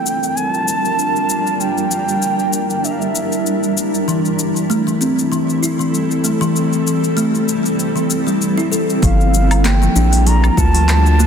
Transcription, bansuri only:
Already playing: G5
0.37 A5
1.61 G5
2.85 E5
2.91 F5
3.00 E5
9.04 F5
9.65 G5
10.27 A#5
10.58 A5

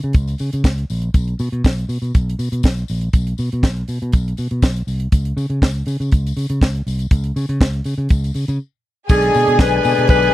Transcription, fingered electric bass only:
0.04 C#3
0.15 C#2
0.40 C#3
0.53 C#3
0.65 C#2
0.90 A#1
1.14 B1
1.40 B2
1.52 B2
1.65 B1
1.89 B2
2.02 B2
2.15 B1
2.39 B2
2.52 B2
2.64 B1
2.90 A#1
3.14 B1
3.39 B2
3.53 B2
3.63 B1
3.89 B2
4.02 B2
4.14 B1
4.39 B2
4.51 B2
4.63 B1
4.87 C2
5.13 C#2
5.37 C#3
5.50 C#3
5.62 C#2
5.87 C#3
6.00 C#3
6.13 C#2
6.37 C#3
6.50 C#3
6.62 C#2
6.87 C2
7.11 C#2
7.36 C#3
7.49 C#3
7.61 C#2
7.85 C#3
7.98 C#3
8.11 C#2
8.35 C#3
8.48 C#3
9.10 B1
9.35 B2
9.48 B2
9.59 B1
9.85 B2
9.98 B2
10.09 B1

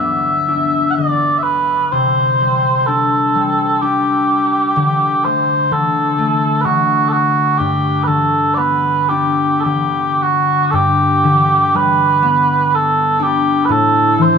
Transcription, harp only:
Already playing: G2 D3
0.00 B3
0.48 D4
0.98 D3
1.92 C3
2.40 G3
2.88 D4
3.35 G3
3.82 D4
4.76 D3
5.24 A3
5.71 D3
6.18 A3
6.65 D3
7.59 G2
8.07 D3
8.57 B3
9.10 D4
9.65 D3
10.73 G2
11.24 D3
11.75 G3
12.22 B3
13.20 D4
13.69 A2
14.18 E3

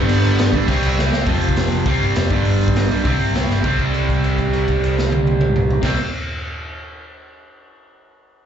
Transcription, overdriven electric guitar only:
Already playing: G2 D3 G3
0.55 G2 D3 G3
0.67 C3 G3 C4
1.26 F2 C3 F3
1.87 C3 G3 C4
2.31 G2 D3 G3
2.91 G2 D3 G3
3.04 C3 G3 C4
3.62 C3 G3
3.67 C4
5.83 C3 G3 C4

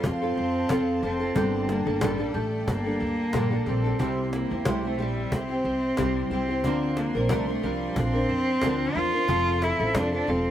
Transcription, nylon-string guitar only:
Already playing: C4 F4 A4
0.22 C4 F4 A4
0.69 F3 C4 F4 A4
1.02 F3 C4 F4 A4
1.19 C4 F4 A4
1.34 G2 D3 G3 A#3 D4 A4
1.85 G3 A#3 D4 A4
2.01 G2 D3 G3 A#3 D4 A4
2.18 G3 A#3 D4 A4
2.33 G3 D4 A4
2.84 G3 A#3 D4 A4
3.33 G2 D3 G3 A#3 D4 A4
3.51 G3 A#3 D4 A4
3.66 G3 A#3 D4 A4
3.84 G3 A#3 D4 A4
3.99 C3 G3 C4 E4 G4
4.50 C4 E4 G4
4.65 C3 G3 C4 E4 G4
4.83 C4 E4 G4
4.98 G3 C4 E4 G4
5.49 C4 E4 G4
5.97 C3 G3 C4 E4 G4
6.31 G3 C4 E4 G4
6.49 C4 E4 G4
6.64 D3 F3 C4 D4 A#4
7.15 C4 D4 A#4
7.29 D3 F3 C4 D4 A#4
7.47 C4 D4 A#4
7.62 F3 C4 D4 A#4
8.13 C4 D4 A#4
8.62 D3 F3 C4 D4 A#4
8.95 F3 C4 D4 A#4
9.13 C4 D4 A#4
9.27 F3 C4 F4 A4
9.79 C4 F4 A4
9.94 F3 C4 F4 A4
10.13 C4 F4 A4
10.27 F3 C4 F4 A4

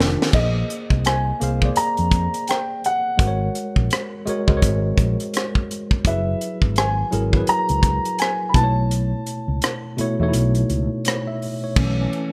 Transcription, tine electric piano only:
Already playing: D#3 D4 F4 G4 A#4
0.35 A#3 G#4 C5 D#5
1.40 A#3 G#4 C5 F5
1.62 A#3 G#4 C5 D5
3.17 G#3 F#4 A#4 C5
3.27 C#5
4.26 G#3 F#4 A#4 C#5
4.47 G#3 F#4 A#4 C5
4.57 C#5
6.05 F#3 E4 G#4 B4
7.11 F#3 E4 G#4 A#4
7.33 F#3 E4 G#4 B4
8.54 B2 A3 E4 B4
8.64 C#5
9.97 B2 A3 E4 C#5
10.19 B2 A3 D#4 C#5
10.28 E4
11.06 C#5
11.27 E5
11.64 C#5
11.77 E3 A3 C#4

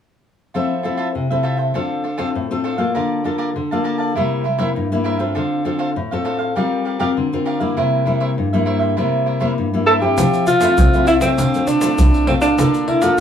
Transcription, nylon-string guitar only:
0.55 F3 C4 E4 A4
0.84 C4 E4 A4
1.15 C3
1.31 C4 E4 A4
1.75 D3 C4 F4 A4
2.18 C4 F4 A4
2.35 A2
2.51 C4 F4 A4
2.78 A#3 F4 A4
2.96 D3
3.25 A#3 F4 A4
3.56 D3
3.72 A#3 F4 A4
4.17 C3 G3 A#3 E4
4.59 G3 A#3 E4
4.76 G2
4.92 G3 A#3 E4
5.19 C4 F4 A4
5.36 D3
5.65 C4 F4 A4
5.96 A2
6.12 C4 F4 A4
6.57 G3 C4 F4 A#4
7.00 C4 F4 A#4
7.17 D3
7.33 C4 F4 A#4
7.60 G3 A#3 E4
7.77 C3
8.06 G3 A#3 E4
8.38 G2
8.54 G3 A#3 E4
8.98 C3 G3 A#3 E4
9.41 G3 A#3 E4
9.58 G2
9.74 G3 A#3 E4
10.02 C4 E4 A4
10.18 F3
10.62 A3 C4 E4
10.78 C3
10.94 A3 C4 E4
11.22 A3 C4 F4
11.39 D3
11.55 A3 C4 F4
11.83 A3 C4 F4
12.00 A2
12.29 A3 C4 F4
12.59 D3 A#3 F4 A4
13.03 A#3 F4 A4

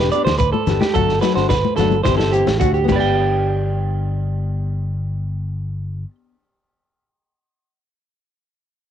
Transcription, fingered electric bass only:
0.26 D2
0.67 G1
0.95 G1
1.37 G1
1.77 G1
2.05 G1
2.47 A1
2.61 D2
2.89 G1

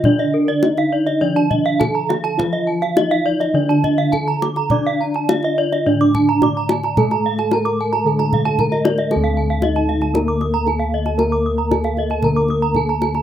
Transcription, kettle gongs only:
Already playing: D3
0.05 D4
0.64 D#4
1.22 F3
1.79 D#4
2.38 F4
2.96 D#4
3.54 D3
4.13 D#4
4.71 D5
5.29 D#4
5.86 A2
6.42 D#4
6.98 A4
7.52 D#4
8.05 D3
8.59 D#4
9.11 A4
9.16 D2
9.63 D#4
10.67 D#4
11.18 A#4
11.71 D#4
12.23 D3
12.75 D#4

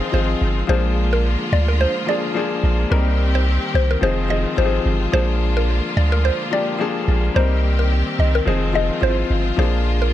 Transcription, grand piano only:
Already playing: F3 C4 D#4 G#4
0.12 F3 C4 D#4 G#4
0.67 F3 A#3 D4 G#4
2.06 F3 A#3 D4 G#4
2.34 F3 A#3 D4 G#4
2.90 G3 C4 D#4 A#4
4.01 F3 C4 D#4 G#4
4.28 F3 C4 D#4 G#4
4.57 F3 C4 D#4 G4
4.65 G#4
5.12 F3 A#3 D4 G#4
6.51 F3 A#3 D4 G4
6.79 F3 A#3 D4 G#4
7.34 G3 C4 D#4 A#4
8.45 F3 C4 D#4 G#4
8.73 F3 C4 D#4 G#4
9.01 F3 C4 D#4 E4
9.10 F4
9.56 F3 A#3 D4 G#4

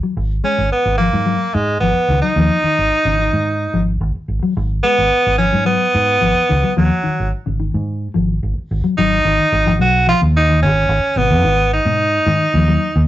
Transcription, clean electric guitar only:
0.03 F#3
0.44 G#3
0.99 F3
1.13 F#3
1.26 F#3
1.82 F3
2.10 D#3
2.23 F#3
2.36 F3
2.64 D#3
3.06 C#3
3.19 D#3
3.74 F3
4.43 F#3
4.84 G#3
5.38 F3
5.52 F#3
5.65 F#3
6.21 F3
6.49 D#3
6.63 F#3
6.77 F3
7.03 D#3
7.46 C#3
7.60 D#3
8.14 F3
8.84 F#3
8.98 F#3
9.25 D#3
9.66 F3
9.79 F#3
10.07 F3
10.49 D#3
11.17 B2
11.44 D#3
11.85 B2
12.26 D#3
12.55 F3
12.68 F#3

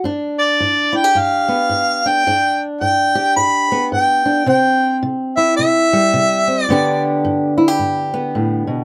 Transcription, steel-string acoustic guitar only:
0.04 G2 D4
0.60 G2
0.93 E4
1.04 G4
1.15 G2
1.48 B3
1.69 G2
2.06 D4
2.27 G2 D4
2.81 G2
3.15 G4
3.36 G2
3.72 B3
3.92 G2
4.26 D4
4.46 C3 C4
5.03 C3
5.37 E4
5.59 C3
5.93 G3
6.14 C3
6.48 C4
6.69 G2 D3 B3 D4 G4
7.25 G2
7.58 E4
7.68 G4
7.79 G2
8.14 B3
8.35 A2
8.67 B2

